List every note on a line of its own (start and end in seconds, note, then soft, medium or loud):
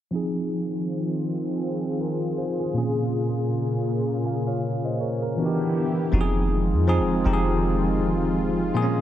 0.11 2.73 D#3 medium
0.11 2.70 F3 medium
0.11 2.71 C4 medium
0.11 2.73 C4 medium
0.11 2.72 D#4 medium
0.11 5.34 F4 medium
0.11 5.34 G#4 medium
0.15 1.98 G#4 medium
2.01 2.36 A#4 medium
2.38 2.59 G#4 medium
2.38 2.58 C5 medium
2.60 2.96 F4 soft
2.60 2.77 G#4 medium
2.73 5.33 A#2 medium
2.73 5.35 C#3 medium
2.73 5.34 A#3 medium
2.73 5.35 A#3 medium
2.73 5.34 C#4 medium
2.78 5.35 G#4 medium
4.26 4.46 F5 medium
4.26 4.46 G#5 medium
4.47 4.83 C#5 medium
4.47 4.83 F5 medium
4.85 5.00 C5 medium
4.85 5.00 D#5 medium
5.01 5.21 A#4 medium
5.01 5.21 C#5 medium
5.22 5.58 A#4 medium
5.37 6.12 D3 medium
5.37 6.12 E3 medium
5.37 6.12 B3 medium
5.37 6.13 B3 medium
5.37 6.13 D4 medium
5.37 6.12 E4 medium
5.37 5.46 F#4 medium
5.37 6.12 G4 medium
5.46 6.17 G4 medium
6.12 6.74 F1 loud
6.12 8.72 D#3 medium
6.12 6.82 F3 medium
6.12 8.72 G#3 medium
6.12 8.72 C4 medium
6.12 6.83 C4 medium
6.12 6.83 D#4 medium
6.12 9.01 F4 medium
6.12 6.21 F#4 medium
6.21 6.87 G#4 medium
6.72 7.00 F2 loud
6.87 7.22 F3 medium
6.87 7.23 C4 medium
6.87 7.23 D#4 medium
6.87 7.23 G#4 medium
6.99 7.24 F1 medium
7.24 8.71 F1 loud
7.24 8.64 F3 medium
7.24 8.65 C4 medium
7.24 8.65 D#4 medium
7.24 7.34 G4 medium
7.33 8.69 G#4 medium
8.74 9.01 A#2 medium
8.74 9.01 C#3 medium
8.74 9.01 G#3 medium
8.74 9.01 A#3 medium
8.74 8.83 C4 medium
8.74 9.01 G#4 medium
8.82 9.01 C#4 medium